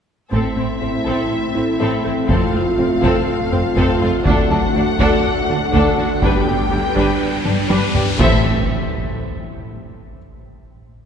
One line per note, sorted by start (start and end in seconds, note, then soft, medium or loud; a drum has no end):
0.32 0.40 A1 soft
0.32 0.40 A2 medium
0.32 0.47 A3 medium
0.32 6.19 A3 medium
0.32 2.25 C4 soft
0.32 0.55 C4 soft
0.32 4.22 C4 medium
0.32 2.25 E4 soft
0.32 2.26 E4 medium
0.32 0.55 A4 soft
0.32 6.19 A4 medium
0.32 2.26 E5 soft
0.32 taiko medium
0.56 0.65 A1 soft
0.56 0.65 A2 soft
0.56 0.72 C4 soft
0.56 0.66 C4 soft
0.56 0.64 E4 soft
0.56 2.01 C6 soft
0.81 0.90 A1 soft
0.81 0.89 A2 soft
0.81 0.90 C4 soft
0.81 0.96 A4 medium
1.05 1.14 A1 medium
1.05 1.14 A2 soft
1.05 1.21 A3 medium
1.05 1.29 C4 soft
1.05 1.29 A4 soft
1.55 1.64 A1 soft
1.55 1.64 A2 soft
1.55 1.63 C4 soft
1.55 1.64 C4 soft
1.55 1.70 E4 medium
1.79 1.88 A1 medium
1.79 1.88 A2 medium
1.79 1.95 A3 medium
1.79 2.03 C4 medium
1.79 2.02 A4 medium
1.79 3.24 B5 soft
2.04 2.13 A1 soft
2.04 2.13 A2 soft
2.04 2.12 C4 soft
2.04 2.12 E4 soft
2.04 2.19 A4 medium
2.28 2.37 F1 medium
2.28 2.37 F2 medium
2.28 2.44 F3 medium
2.28 6.19 A3 medium
2.28 2.52 C4 medium
2.28 4.26 F4 medium
2.28 4.22 F4 medium
2.28 2.51 A4 medium
2.28 4.22 F5 soft
2.28 taiko medium
2.53 2.62 F1 soft
2.53 2.62 F2 soft
2.53 2.69 A3 medium
2.53 2.62 C4 soft
2.53 2.61 F4 soft
2.78 2.86 F1 soft
2.78 2.87 F2 soft
2.78 2.86 C4 soft
2.78 2.87 C4 soft
2.78 2.93 F4 medium
3.02 3.10 F1 medium
3.02 3.11 F2 medium
3.02 3.18 F3 medium
3.02 3.26 C4 medium
3.02 3.26 A4 medium
3.02 taiko medium
3.52 3.61 F1 soft
3.52 3.60 F2 soft
3.52 3.60 C4 medium
3.52 3.67 C4 medium
3.52 3.60 C4 soft
3.76 3.85 F1 medium
3.76 3.84 F2 medium
3.76 3.91 F3 medium
3.76 4.00 C4 medium
3.76 4.00 A4 medium
3.76 taiko medium
4.01 4.10 F1 medium
4.01 4.09 F2 soft
4.01 4.09 C4 medium
4.01 4.16 F4 medium
4.01 4.10 F4 medium
4.25 4.33 D2 medium
4.25 4.34 D2 medium
4.25 4.41 D3 medium
4.25 4.49 D4 medium
4.25 8.20 D4 medium
4.25 6.18 F#4 medium
4.25 6.23 F#4 medium
4.25 4.49 A4 medium
4.25 6.22 F#5 medium
4.25 taiko loud
4.25 riser medium
4.50 4.58 D2 soft
4.50 4.58 D2 medium
4.50 4.65 F#3 medium
4.50 4.58 D4 soft
4.50 4.60 F#4 soft
4.50 5.95 A4 soft
4.50 5.95 A5 medium
4.75 4.83 D2 medium
4.75 4.90 D4 medium
4.75 4.83 D4 soft
4.75 4.84 D4 medium
4.99 5.07 D2 medium
4.99 5.08 D2 medium
4.99 5.14 D3 medium
4.99 5.23 D4 medium
4.99 5.23 A4 medium
4.99 taiko medium
5.48 5.56 D2 medium
5.48 5.57 D2 medium
5.48 5.64 A3 medium
5.48 5.57 D4 medium
5.48 5.58 D4 medium
5.73 5.81 D2 medium
5.73 5.88 D3 medium
5.73 5.97 D4 medium
5.73 5.97 A4 medium
5.73 taiko medium
5.97 6.06 D2 soft
5.97 6.12 D4 medium
5.97 6.07 D4 medium
5.97 6.06 F#4 medium
6.22 6.30 G1 medium
6.22 6.30 G2 medium
6.22 8.19 G3 medium
6.22 6.37 G3 medium
6.22 7.91 B3 medium
6.22 6.46 D4 medium
6.22 7.91 G4 medium
6.22 8.20 G4 medium
6.22 8.19 B4 medium
6.22 6.46 B4 medium
6.22 7.99 G5 medium
6.22 taiko medium
6.47 6.55 G1 soft
6.47 6.55 G2 soft
6.47 6.62 B3 medium
6.47 6.55 D4 soft
6.47 6.56 G4 soft
6.47 7.91 G4 soft
6.47 7.91 G5 medium
6.72 6.80 G1 soft
6.72 6.80 G2 soft
6.72 6.80 D4 soft
6.72 6.81 D4 soft
6.72 6.87 G4 medium
6.96 7.04 G1 medium
6.96 7.05 G2 medium
6.96 7.11 G3 medium
6.96 7.19 D4 medium
6.96 7.20 B4 medium
6.96 taiko medium
7.45 7.53 G1 soft
7.45 7.54 G2 soft
7.45 7.53 D4 soft
7.45 7.60 D4 medium
7.45 7.54 D4 soft
7.45 taiko high medium
7.69 7.78 G1 medium
7.69 7.79 G2 medium
7.69 7.85 G3 medium
7.69 7.93 D4 medium
7.69 7.93 B4 medium
7.69 taiko high medium
7.94 8.03 G1 soft
7.94 8.03 G2 soft
7.94 8.02 D4 medium
7.94 8.10 G4 medium
7.94 8.03 G4 soft
7.94 taiko low medium
8.19 8.47 A1 medium
8.19 8.47 A2 medium
8.19 8.47 E3 medium
8.19 8.46 C4 medium
8.19 8.40 C4 medium
8.19 8.47 E4 medium
8.19 8.40 E4 medium
8.19 8.46 A4 medium
8.19 8.47 A4 medium
8.19 8.47 C5 medium
8.19 8.47 E5 medium
8.19 taiko loud
8.19 impact medium